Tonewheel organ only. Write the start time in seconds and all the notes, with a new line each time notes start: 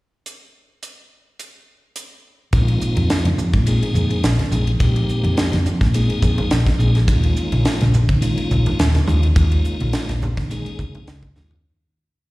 2.53 G#3 A#3 C4 D#4 F4
3.66 G#3 A#3 C4 D#4 G#4
4.51 G#3 A#3 C4 D#4 G#4
4.79 G#3 A#3 C4 D#4 G4
5.93 G#3 A#3 C4 D#4 G#4
6.79 G#3 A#3 C4 D#4 G#4
7.07 G#3 A#3 C#4 D#4 F4
8.21 G#3 A#3 C#4 D#4 F4
9.07 G#3 A#3 C#4 D#4 F4
9.35 G#3 A#3 C#4 D#4 F4
10.50 G#3 A#3 C#4 D#4 G#4
11.36 G#3 A#3 C#4 D#4 F4